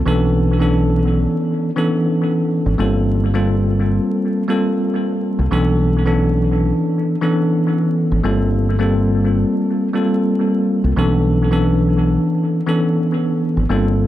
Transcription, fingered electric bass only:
0.06 1.26 B1 loud
2.66 2.77 G#1 medium
2.79 3.98 G1 loud
5.39 5.50 C2 medium
5.52 6.71 B1 loud
8.12 8.22 G#1 medium
8.24 9.44 G1 loud
10.84 10.95 C2 medium
10.97 12.16 B1 loud
13.57 13.68 G#1 medium
13.70 14.07 G1 loud

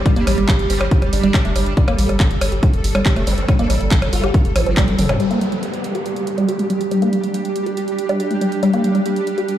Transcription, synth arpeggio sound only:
0.06 0.13 G3 loud
0.16 0.23 A#3 loud
0.27 0.34 G3 medium
0.38 0.42 G3 medium
0.81 0.88 G4 medium
1.24 1.28 G3 loud
1.34 1.41 G4 medium
1.45 1.49 A3 medium
1.56 1.63 G3 medium
1.77 1.84 G3 loud
1.88 1.95 A#3 loud
1.99 2.05 G3 medium
2.09 2.13 G3 medium
2.52 2.59 G4 medium
2.95 2.99 G3 loud
3.06 3.13 G4 medium
3.16 3.21 A3 medium
3.27 3.34 G3 medium
3.49 3.55 G3 loud
3.59 3.66 A#3 loud
3.70 3.77 G3 medium
3.81 3.85 G3 medium
4.24 4.30 G4 medium
4.56 4.63 F3 loud
4.66 4.77 F3 loud
4.77 4.81 G3 loud
4.88 4.92 G3 medium
4.99 5.03 G3 medium
5.20 5.27 G3 loud
5.31 5.38 A#3 loud
5.41 5.48 G3 medium
5.52 5.56 G3 medium
5.95 6.02 G4 medium
6.38 6.42 G3 loud
6.49 6.55 G4 medium
6.59 6.63 A3 medium
6.70 6.77 G3 medium
6.91 6.98 G3 loud
7.02 7.09 A#3 loud
7.13 7.20 G3 medium
7.24 7.28 G3 medium
7.66 7.73 G4 medium
8.09 8.13 G3 loud
8.20 8.27 G4 medium
8.31 8.35 A3 medium
8.41 8.48 G3 medium
8.63 8.70 G3 loud
8.74 8.80 A#3 loud
8.84 8.91 G3 medium
8.95 8.99 G3 medium
9.38 9.45 G4 medium

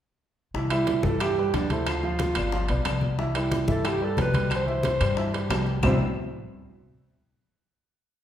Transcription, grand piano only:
0.55 0.68 E3 medium
0.55 0.69 E4 medium
0.55 0.69 E5 medium
0.72 0.98 G3 medium
0.72 0.98 G4 medium
0.72 0.99 B4 medium
1.04 1.18 E3 medium
1.04 1.18 E4 medium
1.04 1.18 E5 medium
1.21 1.35 E3 medium
1.21 1.35 E4 medium
1.21 1.35 E5 medium
1.38 1.65 G3 medium
1.38 1.65 G4 medium
1.38 1.65 B4 medium
1.71 1.98 A3 medium
1.71 1.98 A4 medium
1.71 1.98 C5 medium
2.03 2.30 F3 medium
2.03 2.31 F4 medium
2.03 2.31 F5 medium
2.36 2.50 B3 medium
2.36 2.50 B4 medium
2.36 2.50 D5 medium
2.53 2.67 F3 medium
2.53 2.67 F4 medium
2.53 2.67 F5 medium
2.69 2.83 B3 medium
2.69 2.83 B4 medium
2.69 2.83 D5 medium
2.85 3.13 B3 medium
2.85 3.13 B4 medium
2.85 3.13 D5 medium
3.18 3.32 E3 medium
3.18 3.32 E4 medium
3.18 3.33 E5 medium
3.34 3.62 G3 medium
3.34 3.62 G4 medium
3.34 3.63 B4 medium
3.68 3.82 E3 medium
3.68 3.82 E4 medium
3.68 3.82 E5 medium
3.84 3.98 E3 medium
3.84 3.98 E4 medium
3.84 3.98 E5 medium
4.01 4.28 G3 medium
4.01 4.28 G4 medium
4.01 4.29 B4 medium
4.34 4.61 G3 medium
4.34 4.61 G4 medium
4.34 4.62 B4 medium
4.66 4.94 E3 medium
4.66 4.94 E4 medium
4.66 4.95 E5 medium
5.00 5.14 G3 medium
5.00 5.15 G4 medium
5.00 5.15 B4 medium
5.18 5.31 E3 medium
5.18 5.31 E4 medium
5.18 5.31 E5 medium
5.33 5.47 G3 medium
5.33 5.47 G4 medium
5.33 5.47 B4 medium
5.51 5.78 G3 medium
5.51 5.78 G4 medium
5.51 5.78 B4 medium
5.84 5.99 C3 medium
5.84 5.99 G3 medium
5.84 5.99 B3 medium
5.84 5.99 C4 medium
5.84 5.99 D4 medium
5.84 6.00 E4 medium

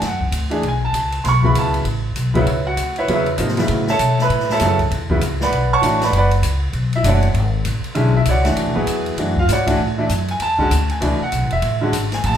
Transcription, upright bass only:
0.02 0.31 F#2 medium
0.32 0.61 D2 medium
0.62 0.92 B1 medium
0.93 1.23 C#2 medium
1.24 1.54 B1 medium
1.55 1.84 C#2 medium
1.85 2.15 A1 medium
2.16 2.46 B1 medium
2.46 2.76 C#2 medium
2.77 3.07 D2 medium
3.08 3.37 E2 medium
3.38 3.68 G#2 medium
3.69 3.98 A2 medium
3.99 4.29 B2 medium
4.29 4.59 A2 medium
4.61 4.90 F#2 medium
4.91 5.20 E2 medium
5.22 5.51 C#2 medium
5.52 5.81 B1 medium
5.82 6.11 A1 medium
6.12 6.41 F#1 medium
6.42 6.72 C#2 medium
6.73 7.03 B1 medium
7.04 7.33 F#1 medium
7.34 7.64 G#1 medium
7.66 7.83 A1 medium
7.85 muted upright bass stroke soft
7.96 8.26 B1 medium
8.26 8.55 C#2 medium
8.56 8.66 D2 medium
8.66 8.76 B1 medium
8.77 8.86 A1 medium
8.86 9.16 E2 medium
9.16 9.47 F#2 medium
9.47 9.77 G#2 medium
9.78 10.08 A2 medium
10.09 10.39 F#2 medium
10.40 10.70 E2 medium
10.71 11.00 D2 loud
11.01 11.19 C#2 medium
11.20 muted upright bass stroke soft
11.32 11.43 B1 medium
11.43 11.51 A1 medium
11.52 11.61 E1 medium
11.62 11.92 A1 medium
11.92 12.22 G#1 medium
12.24 12.34 A1 loud
12.34 12.37 E1 medium

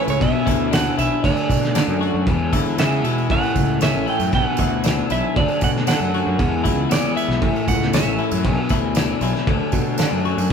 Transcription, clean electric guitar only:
0.00 0.20 A2 medium
0.00 0.21 C#4 medium
0.00 0.20 E4 medium
0.20 1.23 B2 medium
0.46 0.96 E4 medium
0.71 1.23 D4 medium
0.98 1.23 E4 medium
1.24 2.26 D3 medium
1.75 2.27 D4 medium
2.01 2.27 F#4 medium
2.27 3.30 E2 medium
2.53 3.03 E4 medium
2.79 3.30 B3 medium
3.04 3.30 E4 medium
3.30 4.33 A2 medium
3.82 4.33 C#4 medium
4.06 4.32 E4 medium
4.33 5.36 B2 medium
4.59 5.09 E4 medium
4.84 5.36 D4 medium
5.11 5.36 E4 medium
5.37 6.39 D3 medium
5.87 6.39 D4 medium
6.14 6.39 F#4 medium
6.39 7.42 E2 medium
6.64 7.15 E4 medium
6.89 7.41 B3 medium
7.16 7.42 E4 medium
7.42 8.44 A2 medium
7.94 8.45 C#4 medium
8.19 8.45 E4 medium
8.44 9.47 B2 medium
8.71 9.21 E4 medium
8.97 9.48 D4 medium
9.23 9.48 E4 medium
9.48 10.51 D3 medium
9.99 10.51 D4 medium
10.25 10.51 F#4 medium

